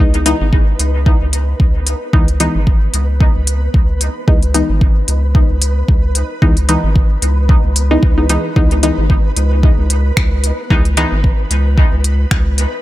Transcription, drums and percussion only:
0.14 closed hi-hat
0.26 closed hi-hat
0.53 kick
0.79 closed hi-hat
1.06 kick
1.33 closed hi-hat
1.60 kick
1.87 closed hi-hat
2.13 kick
2.28 closed hi-hat
2.40 closed hi-hat
2.67 kick
2.94 closed hi-hat
3.21 kick
3.47 closed hi-hat
3.74 kick
4.01 closed hi-hat
4.28 kick
4.43 closed hi-hat
4.54 closed hi-hat
4.81 kick
5.08 closed hi-hat
5.35 kick
5.62 closed hi-hat
5.88 kick
6.15 closed hi-hat
6.42 kick
6.57 closed hi-hat
6.69 closed hi-hat
6.96 kick
7.22 closed hi-hat
7.49 kick
7.76 closed hi-hat
8.03 kick
8.29 closed hi-hat
8.56 kick
8.71 closed hi-hat
8.83 closed hi-hat
9.10 kick
9.37 closed hi-hat
9.63 kick
9.90 closed hi-hat
10.17 finger snap, kick
10.44 closed hi-hat
10.70 kick
10.85 closed hi-hat
10.97 closed hi-hat
11.24 kick
11.51 closed hi-hat
11.78 kick
12.04 closed hi-hat
12.31 finger snap, kick
12.58 closed hi-hat

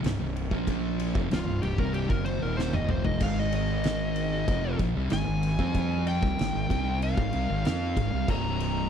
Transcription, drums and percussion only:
0.04 snare, ride
0.36 ride
0.51 kick
0.67 kick, ride
0.99 ride
1.15 kick
1.31 snare, ride
1.63 ride
1.78 kick
1.94 ride
2.10 kick
2.26 ride
2.59 snare
2.73 high tom
2.89 mid tom
3.04 floor tom
3.20 kick, crash, ride
3.52 ride
3.84 snare, ride
4.16 ride
4.48 kick, ride
4.79 kick, ride
5.10 snare, ride
5.43 ride
5.59 kick
5.74 kick, ride
6.07 ride
6.23 kick
6.39 snare, ride
6.70 kick, ride
7.02 ride
7.17 kick
7.33 ride
7.65 snare, ride
7.97 kick, ride
8.28 kick, crash
8.60 ride

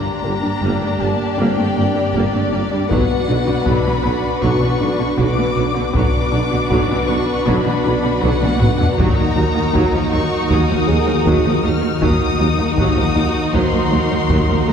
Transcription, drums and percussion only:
2.91 taiko
3.67 taiko
4.42 taiko
5.19 taiko
5.95 taiko
6.71 taiko
7.47 taiko
8.23 taiko mid
8.42 taiko high
8.61 taiko low-mid
8.81 taiko low
9.00 taiko
9.75 taiko
10.50 taiko
11.26 taiko
12.02 taiko
12.78 taiko
13.54 taiko
14.30 taiko

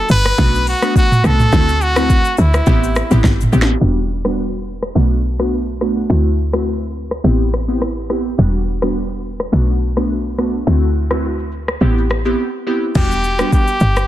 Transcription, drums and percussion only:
0.09 shaker
0.25 cross-stick, shaker
0.38 kick, shaker
0.55 shaker
0.67 open hi-hat
0.82 cross-stick, shaker
0.96 kick, shaker
1.12 mid tom, shaker
1.24 cross-stick, shaker
1.40 mid tom, shaker
1.52 kick, shaker
1.69 shaker
1.81 shaker
1.96 cross-stick, shaker
2.10 kick, shaker
2.25 shaker
2.37 shaker
2.54 cross-stick, shaker
2.67 kick, shaker
2.84 shaker
2.96 cross-stick, shaker
3.11 mid tom, shaker
3.24 kick, snare, shaker
3.41 mid tom, shaker
3.53 shaker
3.62 snare
3.68 shaker
4.25 cross-stick
4.83 cross-stick
5.40 cross-stick
5.81 cross-stick
6.53 cross-stick
7.11 cross-stick
7.54 cross-stick
7.82 cross-stick
8.10 cross-stick
8.38 shaker
8.55 shaker
8.67 shaker
8.82 cross-stick, shaker
8.96 shaker
9.11 shaker
9.23 shaker
9.40 cross-stick, shaker
9.52 shaker
9.70 shaker
9.97 cross-stick, shaker
10.11 shaker
10.27 shaker
10.38 cross-stick, shaker
10.54 shaker
10.67 shaker
10.83 shaker
10.96 shaker
11.11 cross-stick, shaker
11.24 shaker
11.39 shaker
11.52 shaker
11.68 cross-stick, shaker
11.81 shaker
11.98 shaker
12.10 cross-stick, shaker
12.25 shaker
12.95 kick, crash, shaker
13.12 shaker
13.24 shaker
13.39 cross-stick, shaker
13.52 kick, shaker
13.67 shaker
13.80 shaker
13.97 cross-stick, shaker

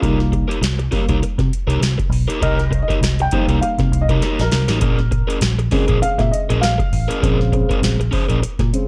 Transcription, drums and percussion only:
0.03 kick, closed hi-hat
0.20 snare
0.32 kick, closed hi-hat
0.51 closed hi-hat
0.63 snare, closed hi-hat
0.79 closed hi-hat
0.92 kick, snare, open hi-hat
1.09 kick, closed hi-hat
1.23 closed hi-hat
1.39 kick, snare, closed hi-hat
1.53 closed hi-hat
1.70 closed hi-hat
1.83 snare, closed hi-hat
1.99 kick, closed hi-hat
2.12 open hi-hat
2.30 closed hi-hat
2.42 kick, closed hi-hat
2.59 snare, closed hi-hat
2.72 kick, closed hi-hat
2.90 kick, closed hi-hat
3.03 snare, closed hi-hat
3.19 closed hi-hat
3.31 kick, closed hi-hat
3.49 closed hi-hat
3.63 closed hi-hat
3.79 kick, snare, closed hi-hat
3.93 closed hi-hat
4.08 kick, closed hi-hat
4.22 snare, closed hi-hat
4.39 snare, closed hi-hat
4.52 snare, open hi-hat
4.68 snare, closed hi-hat
4.81 kick, closed hi-hat
4.99 snare
5.12 kick, closed hi-hat
5.30 closed hi-hat
5.41 snare, closed hi-hat
5.59 closed hi-hat
5.71 kick, snare, open hi-hat
5.88 kick, closed hi-hat
6.03 closed hi-hat
6.19 kick, snare, closed hi-hat
6.34 closed hi-hat
6.50 closed hi-hat
6.63 snare, closed hi-hat
6.79 kick, closed hi-hat
6.93 open hi-hat
7.11 closed hi-hat
7.23 kick, closed hi-hat
7.41 snare
7.52 kick, closed hi-hat
7.70 kick, closed hi-hat
7.83 snare, closed hi-hat
8.01 closed hi-hat
8.12 kick, open hi-hat
8.29 closed hi-hat
8.43 closed hi-hat
8.59 kick, snare, closed hi-hat
8.74 closed hi-hat

